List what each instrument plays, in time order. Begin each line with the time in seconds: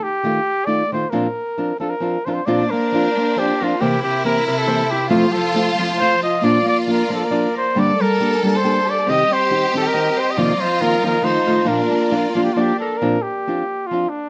0.03 trumpet G4
0.23 nylon-string guitar D#3 A3 D#4 F4
0.66 nylon-string guitar D#3 A3 D#4 F4, trumpet D5
0.92 nylon-string guitar D#3 A3 D#4 F4, trumpet C5
1.10 nylon-string guitar A#2 F3 C4 D4 F4, trumpet A#4
1.58 nylon-string guitar F3 C4 D4 F4
1.80 nylon-string guitar F3 C4 D4 F4, trumpet A4
1.90 trumpet A#4
2.00 nylon-string guitar F3 C4 D4 F4
2.25 nylon-string guitar F3 C4 D4 F4, trumpet C5
2.29 trumpet A#4
2.34 trumpet C5
2.45 nylon-string guitar A#2 F3 C4 D4 F4, harp A#3, violin section A#3 D4 C5, trumpet D5
2.70 harp A#3, trumpet A#4
2.92 nylon-string guitar F3 C4 D4 F4
3.17 harp A#3
3.36 nylon-string guitar F3 C4 D4 F4, trumpet G4, harp C5
3.60 nylon-string guitar F3 C4 D4 F4, trumpet F4, harp A#4
3.80 nylon-string guitar C3 E3 A#3 C4 G4, harp C3, violin section C4 E4 E5, trumpet G4
4.03 harp C3, trumpet G4
4.24 nylon-string guitar E3 A#3 C4 G4, trumpet A#4
4.46 harp C3, trumpet A#4
4.58 trumpet A4
4.67 nylon-string guitar E3 A#3 C4 G4, harp C5
4.90 harp E4, trumpet G4
5.09 nylon-string guitar F2 C3 F3 A3 C4 F4, harp F3, violin section F4 C5 A5, trumpet F4
5.32 harp F3, trumpet A4
5.54 nylon-string guitar F3 A3 C4 F4
5.78 harp F3, nylon-string guitar F3 A3 C4 F4
5.98 nylon-string guitar F3 A3 C4, trumpet C5, harp F5
6.02 nylon-string guitar F4
6.22 harp F4, trumpet D#5
6.40 nylon-string guitar A#2 F3 A#3 D4 F4, violin section A#3 F4 D5, harp A#3, trumpet D5
6.65 harp A#3, trumpet D5
6.87 nylon-string guitar F3 A#3 D4 F4
6.92 trumpet A#4
7.10 nylon-string guitar F3 A#3 D4 F4, harp A#3, trumpet A4
7.24 trumpet A#4
7.30 nylon-string guitar F3 A#3 D4 F4, harp D5
7.55 harp A#4, trumpet C5
7.74 nylon-string guitar G2 D3 G3 A#3 D4 G4, violin section G3 A#3 D4 A4, harp G3
7.79 trumpet D5
8.00 harp G3, trumpet A#4
8.20 nylon-string guitar G3 A#3 D4 G4
8.43 nylon-string guitar G3 A#3 D4 G4, harp G3, trumpet A#4
8.56 trumpet C5
8.63 nylon-string guitar G3 A#3 D4 G4, harp G5
8.86 harp G4, trumpet D5
9.06 nylon-string guitar C3 D#3 C4 D#4 G4, violin section C4 G4 D#5, harp C4, trumpet D#5
9.31 harp C4, trumpet C5
9.50 nylon-string guitar D#3 C4 D#4 G4
9.73 nylon-string guitar D#3 C4 D#4 G4, harp C4, trumpet A4
9.87 trumpet A#4
9.93 nylon-string guitar D#3 C4 D#4 G4, harp D#5
10.17 harp C5, trumpet C5
10.31 trumpet D#5
10.36 nylon-string guitar F2 C3 D#3 A#3 C4 F4, harp F3, violin section F4 A#5, trumpet D5
10.60 harp F3, trumpet C5
10.80 nylon-string guitar D#3 A#3 C4 F4, trumpet A#4
11.03 nylon-string guitar D#3 A#3 C4 F4, harp F3, trumpet A#4
11.22 nylon-string guitar D#3 A3 D#4 F4, violin section D#4 F4 A5, trumpet C5, harp F5
11.47 nylon-string guitar D#3 A3 D#4 F4, harp F4
11.65 nylon-string guitar A#2 F3 A#3 D4 F4, violin section A#3 D4 D5, harp A#3, trumpet A#4
11.91 harp A#3
12.11 nylon-string guitar F3 A#3 D4 F4, violin section F4
12.35 nylon-string guitar F3 A#3 D4 F4, harp A#3, trumpet F4
12.43 trumpet G4
12.53 nylon-string guitar F3 A#3 D4, trumpet F4, harp D5
12.58 violin section D4, nylon-string guitar F4, trumpet G4
12.79 trumpet A4, harp A#4
12.97 trumpet A#4
13.02 nylon-string guitar A#2 F3 C4 D4 F4
13.22 trumpet G4
13.47 nylon-string guitar F3 C4 D4 F4
13.87 trumpet F4
13.91 nylon-string guitar F3 C4 D4 F4
14.09 trumpet D4